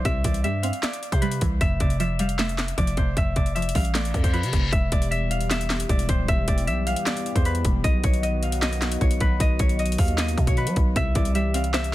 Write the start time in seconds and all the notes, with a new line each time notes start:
Already playing: E3 G3 C5 D5
0.05 C2 C3 E5, kick, closed hi-hat
0.24 C2 E3 D5, kick, closed hi-hat
0.34 closed hi-hat
0.44 G2 G3 E5, closed hi-hat
0.63 C4 F5, closed hi-hat
0.73 closed hi-hat
0.83 D5 E5, snare, clap, closed hi-hat
0.93 closed hi-hat
1.03 closed hi-hat
1.12 C3 C5, kick, closed hi-hat
1.21 G3 B4, closed hi-hat
1.31 closed hi-hat
1.41 C2 E3, kick, closed hi-hat
1.61 F1 F2 E5, kick, closed hi-hat
1.80 F1 C3 D5, kick, closed hi-hat
1.90 closed hi-hat
2.00 F3 E5, closed hi-hat
2.19 G3 F5, closed hi-hat
2.29 closed hi-hat
2.39 A3 E5, snare, clap, closed hi-hat
2.49 closed hi-hat
2.58 snare, clap, closed hi-hat
2.68 closed hi-hat
2.77 F1 F3 D5, kick, closed hi-hat
2.87 closed hi-hat
2.97 F1 C3 C5, kick, closed hi-hat
3.16 F1 F2 E5, kick, closed hi-hat
3.36 F1 C3 D5, kick, closed hi-hat
3.46 closed hi-hat
3.55 F3 E5, closed hi-hat
3.62 closed hi-hat
3.69 closed hi-hat
3.75 A1 G3 F5, kick, open hi-hat
3.85 closed hi-hat
3.94 A3 D5, snare, clap, closed hi-hat, reverse cymbal
4.05 closed hi-hat
4.14 F2, kick, closed hi-hat
4.24 C5, kick, closed hi-hat
4.33 F3 B4, closed hi-hat
4.43 C3, closed hi-hat
4.53 F1 C3, kick, closed hi-hat
4.72 E1 E3 G3 B3 G4 E5, kick, closed hi-hat
4.92 E1 D5, kick, closed hi-hat
5.02 closed hi-hat
5.11 E5, closed hi-hat
5.31 F5, closed hi-hat
5.41 closed hi-hat
5.51 E5, snare, clap, closed hi-hat
5.61 closed hi-hat
5.70 snare, clap, closed hi-hat
5.80 closed hi-hat
5.89 E1 D5, kick, closed hi-hat
5.99 closed hi-hat
6.09 D1 C5, kick, closed hi-hat
6.28 E1 E5, kick, closed hi-hat
6.48 E1 D5, kick, closed hi-hat
6.58 closed hi-hat
6.67 B1 E5, closed hi-hat
6.87 F5, closed hi-hat
6.96 closed hi-hat
7.06 D5, snare, clap, closed hi-hat
7.17 closed hi-hat
7.26 closed hi-hat
7.35 E2 C5, kick, closed hi-hat
7.45 B4, closed hi-hat
7.55 closed hi-hat
7.65 E1, kick, closed hi-hat
7.84 B1 D#3 F#3 F#4 D#5, kick, closed hi-hat
8.03 B1 C#5, kick, closed hi-hat
8.14 closed hi-hat
8.23 D#5, closed hi-hat
8.43 F5, closed hi-hat
8.52 closed hi-hat
8.62 D#5, snare, clap, closed hi-hat
8.73 closed hi-hat
8.82 snare, clap, closed hi-hat
8.92 closed hi-hat
9.01 B1 C#5, kick, closed hi-hat
9.11 closed hi-hat
9.20 B1 B4, kick, closed hi-hat
9.40 B1 D#5, kick, closed hi-hat
9.59 B1 C#5, kick, closed hi-hat
9.69 closed hi-hat
9.79 D#5, closed hi-hat
9.86 closed hi-hat
9.92 closed hi-hat
9.98 D#2 F5, kick, open hi-hat
10.08 closed hi-hat
10.18 D#5, snare, clap, closed hi-hat
10.28 closed hi-hat
10.38 B2, kick, closed hi-hat
10.47 C#5, kick, closed hi-hat
10.57 B4, closed hi-hat
10.67 F#3, closed hi-hat
10.76 B1, kick, closed hi-hat
10.96 C2 C3 E3 G3 C4 G4 E5, kick, closed hi-hat
11.15 C2 E3 D5, kick, closed hi-hat
11.25 closed hi-hat
11.35 G3 E5, closed hi-hat
11.54 C4 F5, closed hi-hat
11.64 closed hi-hat
11.74 C5 E5, snare, clap, closed hi-hat
11.84 closed hi-hat